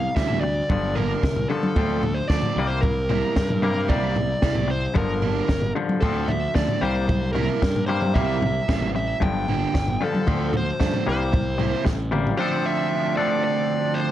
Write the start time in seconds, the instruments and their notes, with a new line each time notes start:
Already playing: clean electric guitar C3 G3, lead electric guitar F5
0.16 picked electric bass D2, overdriven electric guitar C3 G3 A#3 E4, clean electric guitar C3 G3, lead electric guitar E5, kick, snare
0.30 floor tom
0.41 clean electric guitar C3 G3, lead electric guitar D5, muted overdriven electric guitar stroke
0.70 picked electric bass G1, clean electric guitar G2 D3 F3, muted overdriven electric guitar stroke, kick, floor tom, mid tom
0.95 clean electric guitar G2 D3, overdriven electric guitar D3 G3 A#3 D4, lead electric guitar A#4, floor tom
1.23 picked electric bass C2, clean electric guitar G2 D3, muted overdriven electric guitar stroke, kick, snare
1.36 floor tom
1.50 clean electric guitar G2 D3 F3, lead electric guitar A4, muted overdriven electric guitar stroke
1.63 mid tom
1.76 picked electric bass D2, clean electric guitar D3 F3 C4, overdriven electric guitar D3 F3 A3 D4, kick, floor tom
2.03 clean electric guitar D3 F3, muted overdriven electric guitar stroke, floor tom
2.15 lead electric guitar C5
2.28 picked electric bass D2, overdriven electric guitar D3 F3 A3 D4, clean electric guitar D3 F3, lead electric guitar D5, kick, snare
2.43 floor tom
2.56 picked electric bass C2, clean electric guitar C3 G3 A#3, muted overdriven electric guitar stroke
2.67 lead electric guitar C5
2.81 clean electric guitar C3, lead electric guitar A#4, muted overdriven electric guitar stroke, kick, floor tom
2.85 clean electric guitar G3
3.09 clean electric guitar C3 G3, overdriven electric guitar C3 G3 A#3 E4, floor tom
3.36 picked electric bass G2, clean electric guitar C3 G3, muted overdriven electric guitar stroke, kick, snare
3.50 floor tom, mid tom
3.62 clean electric guitar C3 G3 A#3, lead electric guitar A#4, muted overdriven electric guitar stroke, mid tom
3.89 picked electric bass C2, overdriven electric guitar C3 G3 A#3 E4, clean electric guitar C3 G3 A#3, lead electric guitar D5, kick, floor tom
4.16 clean electric guitar C3 G3, muted overdriven electric guitar stroke, floor tom
4.42 picked electric bass C2, overdriven electric guitar C3 G3 A#3 E4, clean electric guitar C3 G3, kick, snare
4.55 floor tom
4.68 clean electric guitar C3 G3, lead electric guitar C5, muted overdriven electric guitar stroke
4.94 picked electric bass G1, clean electric guitar G2 D3 F3, lead electric guitar A#4, muted overdriven electric guitar stroke, kick, floor tom, mid tom
5.22 clean electric guitar G2 D3, overdriven electric guitar D3 G3 A#3 D4, floor tom
5.48 picked electric bass G1, clean electric guitar G2 D3, muted overdriven electric guitar stroke, kick, snare
5.62 floor tom
5.75 clean electric guitar G2 D3 F3, muted overdriven electric guitar stroke
5.89 mid tom
6.01 picked electric bass D2, clean electric guitar D3 F3 C4, overdriven electric guitar D3 F3 A3 D4, lead electric guitar A4, kick, floor tom
6.28 clean electric guitar D3 F3, lead electric guitar E5, muted overdriven electric guitar stroke, floor tom
6.55 picked electric bass D2, clean electric guitar D3 F3, overdriven electric guitar D3 F3 A3 D4, lead electric guitar D5, kick, snare
6.68 floor tom
6.81 picked electric bass C2, clean electric guitar C3 G3 A#3, lead electric guitar C5, muted overdriven electric guitar stroke
7.07 clean electric guitar C3 G3, muted overdriven electric guitar stroke, kick, floor tom, mid tom
7.33 clean electric guitar C3 G3, overdriven electric guitar G3 A#3 E4, lead electric guitar A#4, floor tom
7.37 overdriven electric guitar C3
7.62 picked electric bass G2, clean electric guitar C3 G3, muted overdriven electric guitar stroke, kick, snare
7.76 floor tom
7.86 clean electric guitar C3 G3 A#3, lead electric guitar C5, muted overdriven electric guitar stroke
8.02 mid tom
8.14 picked electric bass C2, clean electric guitar C3 G3 A#3, overdriven electric guitar C3 G3 A#3 E4, lead electric guitar E5, kick, floor tom
8.42 clean electric guitar C3 G3, muted overdriven electric guitar stroke, floor tom
8.69 picked electric bass A1, overdriven electric guitar C3 G3 A#3 E4, clean electric guitar C3 G3, kick, snare
8.82 floor tom
8.95 clean electric guitar C3 G3, lead electric guitar E5, muted overdriven electric guitar stroke
9.20 picked electric bass G1, clean electric guitar G2 D3 F3, lead electric guitar G5, muted overdriven electric guitar stroke, kick, floor tom, mid tom
9.48 clean electric guitar D3, overdriven electric guitar D3 G3 A#3 D4, floor tom
9.74 picked electric bass G1, clean electric guitar G2 D3, muted overdriven electric guitar stroke, kick, snare
9.88 floor tom
10.01 clean electric guitar G2 D3 F3, lead electric guitar A4, muted overdriven electric guitar stroke
10.15 mid tom
10.27 picked electric bass D2, clean electric guitar D3 F3 C4, overdriven electric guitar D3 F3 A3 D4, kick, floor tom
10.53 clean electric guitar D3 F3, lead electric guitar C5, muted overdriven electric guitar stroke, floor tom
10.80 picked electric bass G2, clean electric guitar D3 F3, overdriven electric guitar D3 F3 A3 D4, kick, snare
10.94 floor tom
11.06 picked electric bass C2, clean electric guitar C3 G3 A#3, lead electric guitar C5, muted overdriven electric guitar stroke
11.32 clean electric guitar C3 G3, muted overdriven electric guitar stroke, kick, floor tom
11.58 clean electric guitar C3 G3, overdriven electric guitar C3 G3 A#3 E4, floor tom
11.85 picked electric bass A1, clean electric guitar C3 G3, muted overdriven electric guitar stroke, kick, snare
12.11 clean electric guitar C3 G3 A#3, muted overdriven electric guitar stroke, mid tom
12.27 floor tom
12.37 clean electric guitar D3 F3 C4 D4 A4, overdriven electric guitar D3 F3 A3, lead electric guitar C5
12.41 overdriven electric guitar D4
12.66 lead electric guitar E5
13.17 clean electric guitar F3 C4 D4 A4, lead electric guitar D5
13.21 clean electric guitar D3
13.44 lead electric guitar D5
13.95 lead electric guitar C5